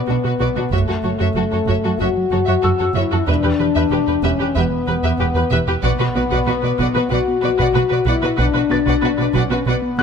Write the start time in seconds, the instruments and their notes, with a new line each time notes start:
Already playing: french horn section B3, felt piano F#6 A6
0.07 double bass section B1, cello section B2, analog synth bass B2, violin section D4 F#4, viola section F#4
0.24 cello section B2, analog synth bass B2, viola section F#4, violin section F#4 B4
0.40 double bass section B1, cello section B2, analog synth bass B2, viola section F#4, violin section B4 D5
0.56 cello section B2, analog synth bass B2, violin section D4 F#4, viola section F#4
0.71 double bass section F#1, cello section F#2, analog synth bass F#2, french horn section A3, viola section F#4, violin section C#5 E5, taiko
0.88 cello section F#2, analog synth bass F#2, viola section F#4, violin section F#4 A4
1.03 double bass section F#1, cello section F#2, analog synth bass F#3, viola section F#4, violin section A4 C#5
1.19 cello section F#2, analog synth bass F#2, viola section F#4, violin section C#5 E5
1.35 double bass section F#1, cello section F#2, analog synth bass F#3, viola section F#4, violin section F#4 A4
1.52 cello section F#2, analog synth bass F#2, viola section F#4, violin section A4 C#5
1.67 double bass section F#1, cello section F#2, analog synth bass F#2, viola section F#4, violin section C#5 E5, taiko
1.84 cello section F#2, analog synth bass F#3, violin section F#4 A4, viola section F#4
2.00 double bass section F#1, cello section F#2, analog synth bass F#2, viola section F#4, french horn section F#4, violin section C#5 E5
2.17 analog synth bass F#3
2.32 double bass section F#1, cello section F#2, analog synth bass F#3, viola section F#4, violin section A4 C#5
2.46 analog synth bass F#2, cello section F#2, viola section F#4, violin section C#5 E5
2.62 double bass section F#1, analog synth bass F#2, cello section F#2, violin section F#4 A4, viola section F#4, felt piano E6
2.78 cello section F#2, analog synth bass F#2, viola section F#4, violin section A4 C#5
2.95 double bass section F#1, cello section F#2, analog synth bass F#2, french horn section E4, viola section F#4, violin section C#5 E5
3.11 cello section F#2, analog synth bass F#2, viola section F#4, violin section F#4 A4
3.27 double bass section E1, analog synth bass E2, cello section E2, french horn section D4, viola section G4 B4, violin section E5
3.44 cello section E2, analog synth bass E2, viola section G4 B4, violin section G4
3.59 double bass section E1, cello section E2, analog synth bass E3, viola section G4 B4, violin section B4
3.75 analog synth bass E2, cello section E2, viola section G4 B4, violin section E5
3.91 double bass section E1, cello section E2, analog synth bass E3, violin section G4, viola section G4 B4
4.07 analog synth bass E2, cello section E2, viola section G4 B4, violin section B4
4.23 double bass section E1, cello section E2, analog synth bass E2, french horn section C#4, viola section G4 B4, violin section E5
4.39 cello section E2, analog synth bass E3, violin section G4, viola section G4 B4
4.55 double bass section E1, analog synth bass E2, cello section E2, french horn section B3, viola section G4 B4, violin section E5
4.71 analog synth bass E3
4.87 double bass section E1, cello section E2, analog synth bass E3, viola section G4 B4, violin section B4
5.03 analog synth bass E2, cello section E2, viola section G4 B4, violin section E5
5.19 double bass section E1, cello section E2, analog synth bass E2, violin section G4, viola section G4 B4
5.34 analog synth bass E2, cello section E2, viola section G4 B4, violin section B4
5.51 double bass section E1, analog synth bass E2, cello section E2, viola section G4 B4, violin section E5
5.67 cello section E2, analog synth bass E2, violin section G4, viola section G4 B4
5.83 double bass section B1, cello section B2, analog synth bass B2, french horn section B3, viola section F#4 B4, violin section D5 F#5, taiko
5.99 cello section B2, analog synth bass B2, violin section F#4 B4, viola section F#4 B4
6.15 double bass section B1, cello section B2, analog synth bass B3, viola section F#4 B4, violin section B4 D5
6.31 cello section B2, analog synth bass B2, viola section F#4 B4, violin section D5 F#5, taiko
6.46 double bass section B1, cello section B2, analog synth bass B3, viola section F#4 B4, violin section F#4 B4
6.62 cello section B2, analog synth bass B2, viola section F#4 B4, violin section B4 D5
6.78 double bass section B1, cello section B2, analog synth bass B2, viola section F#4 B4, violin section D5 F#5, taiko
6.94 cello section B2, analog synth bass B3, viola section F#4 B4, violin section F#4 B4
7.10 double bass section B1, cello section B2, analog synth bass B2, viola section F#4 B4, french horn section F#4, violin section D5 F#5
7.28 analog synth bass B3
7.42 double bass section B1, cello section B2, analog synth bass B3, viola section F#4 B4, violin section B4 D5
7.58 cello section B2, analog synth bass B2, viola section F#4 B4, violin section D5 F#5, taiko
7.74 double bass section B1, cello section B2, analog synth bass B2, viola section F#4 B4, violin section F#4 B4
7.89 cello section B2, analog synth bass B2, viola section F#4 B4, violin section B4 D5
8.06 double bass section B1, analog synth bass B2, cello section B2, french horn section E4, viola section F#4 B4, violin section D5 F#5
8.22 analog synth bass B2, cello section B2, viola section F#4 B4, violin section F#4 B4
8.37 double bass section B1, cello section B2, analog synth bass B2, french horn section D4, viola section F#4 B4, violin section D5 F#5, taiko
8.53 analog synth bass B2, cello section B2, viola section F#4 B4, violin section F#4 B4
8.70 double bass section B1, cello section B2, analog synth bass B3, viola section F#4 B4, violin section B4 D5, felt piano A6
8.86 analog synth bass B2, cello section B2, viola section F#4 B4, violin section D5 F#5, taiko
9.02 double bass section B1, cello section B2, analog synth bass B3, viola section F#4 B4, violin section F#4 B4
9.18 analog synth bass B2, cello section B2, viola section F#4 B4, violin section B4 D5
9.34 double bass section B1, analog synth bass B2, cello section B2, french horn section C#4, viola section F#4 B4, violin section D5 F#5, taiko
9.50 cello section B2, analog synth bass B3, viola section F#4 B4, violin section F#4 B4
9.66 double bass section B1, analog synth bass B2, cello section B2, french horn section B3, viola section F#4 B4, violin section D5 F#5
9.82 analog synth bass B3
9.98 double bass section B1, cello section B2, analog synth bass B3, viola section F#4 B4, felt piano F#6